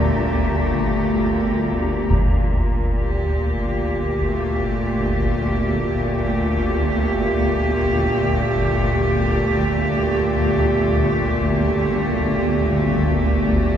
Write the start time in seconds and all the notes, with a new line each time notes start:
Already playing: G1 D2 A#2 A3 G4 A#5
2.10 G1 D2 A#2, concert bass drum
2.97 G4
4.22 A3